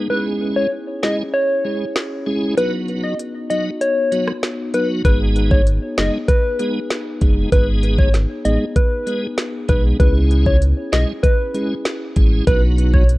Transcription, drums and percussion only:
1.03 snare
1.96 snare
2.58 closed hi-hat
2.88 closed hi-hat
3.19 closed hi-hat
3.50 closed hi-hat
3.81 closed hi-hat
4.12 closed hi-hat
4.28 cross-stick
4.43 snare, closed hi-hat
4.74 closed hi-hat
5.05 kick, closed hi-hat
5.36 closed hi-hat
5.51 kick
5.67 closed hi-hat
5.98 snare, closed hi-hat
6.29 kick, closed hi-hat
6.60 closed hi-hat
6.90 snare, closed hi-hat
7.21 kick, closed hi-hat
7.52 kick, closed hi-hat
7.83 closed hi-hat
7.99 kick
8.14 snare, closed hi-hat
8.45 closed hi-hat
8.76 kick, closed hi-hat
9.07 closed hi-hat
9.38 snare, closed hi-hat
9.69 kick, closed hi-hat
10.00 kick, closed hi-hat
10.31 closed hi-hat
10.46 kick
10.62 closed hi-hat
10.93 snare, closed hi-hat
11.23 kick, closed hi-hat
11.54 closed hi-hat
11.85 snare, closed hi-hat
12.16 kick, closed hi-hat
12.47 kick, closed hi-hat
12.78 closed hi-hat
12.94 kick
13.09 closed hi-hat

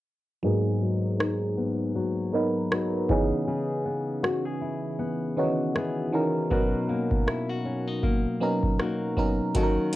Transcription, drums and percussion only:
1.20 cross-stick
2.72 cross-stick
3.09 kick
4.24 cross-stick
5.76 cross-stick
6.51 kick
7.11 kick
7.28 cross-stick
8.03 kick
8.63 kick
8.80 cross-stick
9.17 kick
9.55 kick, closed hi-hat
9.93 closed hi-hat

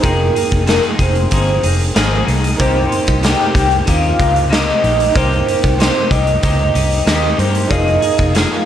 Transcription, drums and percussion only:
0.03 kick, closed hi-hat
0.36 closed hi-hat
0.51 kick, closed hi-hat
0.67 snare, closed hi-hat
0.83 closed hi-hat
0.99 kick, closed hi-hat
1.15 closed hi-hat
1.31 kick, closed hi-hat
1.63 closed hi-hat
1.79 closed hi-hat
1.96 snare, closed hi-hat
2.28 closed hi-hat
2.44 closed hi-hat
2.59 kick, closed hi-hat
2.92 closed hi-hat
3.07 kick, closed hi-hat
3.23 snare, closed hi-hat
3.55 kick, closed hi-hat
3.71 closed hi-hat
3.87 kick, closed hi-hat
4.20 kick, closed hi-hat
4.36 closed hi-hat
4.52 snare, closed hi-hat
4.84 closed hi-hat
5.00 closed hi-hat
5.16 kick, closed hi-hat
5.33 closed hi-hat
5.48 closed hi-hat
5.64 kick, closed hi-hat
5.80 snare, closed hi-hat
6.11 kick, closed hi-hat
6.27 closed hi-hat
6.43 kick, closed hi-hat
6.75 closed hi-hat
6.90 closed hi-hat
7.07 snare, closed hi-hat
7.39 closed hi-hat
7.55 closed hi-hat
7.70 kick, closed hi-hat
7.88 closed hi-hat
8.02 closed hi-hat
8.18 kick, closed hi-hat
8.35 snare, closed hi-hat

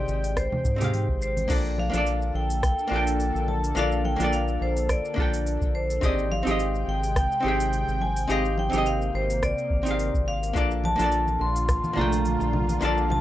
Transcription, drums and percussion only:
0.08 shaker
0.24 open hi-hat, shaker
0.36 kick, cross-stick, open hi-hat, shaker
0.52 high conga, low conga
0.65 kick, shaker
0.81 open hi-hat, low conga, shaker
0.93 open hi-hat, high conga, shaker
1.09 kick
1.22 shaker
1.37 open hi-hat, high conga, shaker
1.50 kick, open hi-hat, crash, shaker
1.66 shaker
1.78 low conga
1.94 open hi-hat, low conga, shaker
2.06 open hi-hat, shaker
2.22 shaker
2.50 open hi-hat, shaker
2.63 kick, cross-stick, open hi-hat, shaker
2.79 shaker
3.07 open hi-hat, shaker
3.20 open hi-hat, shaker
3.36 shaker
3.48 low conga
3.64 open hi-hat, shaker
3.77 open hi-hat, shaker
3.92 shaker
4.05 low conga
4.20 open hi-hat, low conga, shaker
4.33 open hi-hat, shaker
4.48 shaker
4.77 open hi-hat, shaker
4.89 kick, cross-stick, open hi-hat, shaker
5.05 shaker
5.18 kick
5.34 open hi-hat, shaker
5.46 open hi-hat, shaker
5.61 kick, shaker
5.90 open hi-hat, shaker
6.03 kick, open hi-hat, shaker
6.19 shaker
6.31 low conga
6.47 open hi-hat, low conga, shaker
6.59 open hi-hat, shaker
6.75 shaker
7.03 open hi-hat, shaker
7.16 kick, cross-stick, open hi-hat, shaker
7.32 shaker
7.60 open hi-hat, shaker
7.73 open hi-hat, shaker
7.89 shaker
8.01 low conga
8.16 open hi-hat, shaker
8.30 open hi-hat, shaker
8.45 shaker
8.58 low conga
8.73 open hi-hat, low conga, shaker
8.86 open hi-hat, shaker
9.02 shaker
9.30 open hi-hat, shaker
9.42 kick, cross-stick, open hi-hat, shaker
9.58 shaker
9.70 kick
9.86 open hi-hat, shaker
9.99 open hi-hat, shaker
10.14 kick, shaker
10.43 open hi-hat, shaker
10.55 kick, open hi-hat, shaker
10.71 high bongo, shaker
10.84 high conga, low conga
10.99 open hi-hat, high bongo, low conga, shaker
11.12 open hi-hat, shaker
11.28 high conga, shaker
11.40 high bongo
11.56 open hi-hat, shaker
11.69 kick, cross-stick, open hi-hat, high bongo, shaker
11.84 high conga, shaker
11.97 low conga
12.12 open hi-hat, high bongo, shaker
12.25 open hi-hat, high conga, shaker
12.40 high bongo, shaker
12.53 low conga
12.69 open hi-hat, high conga, shaker
12.82 open hi-hat, high bongo, shaker
12.98 shaker
13.10 high bongo, high conga, low conga

